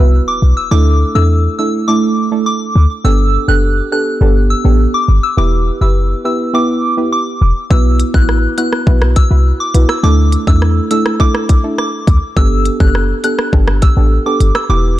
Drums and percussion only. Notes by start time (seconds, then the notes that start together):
7.71 kick
8.00 closed hi-hat
8.14 kick
8.29 cross-stick
8.58 closed hi-hat
8.73 cross-stick
8.87 kick
9.02 cross-stick
9.16 kick, closed hi-hat
9.74 closed hi-hat
9.89 cross-stick
10.32 closed hi-hat
10.47 kick
10.62 cross-stick
10.91 closed hi-hat
11.06 cross-stick
11.20 kick
11.35 cross-stick
11.49 kick, closed hi-hat
11.78 cross-stick
12.07 kick, closed hi-hat
12.37 kick
12.65 closed hi-hat
12.80 kick
12.95 cross-stick
13.24 closed hi-hat
13.39 cross-stick
13.53 kick
13.68 cross-stick
13.82 kick, closed hi-hat
14.40 closed hi-hat
14.55 cross-stick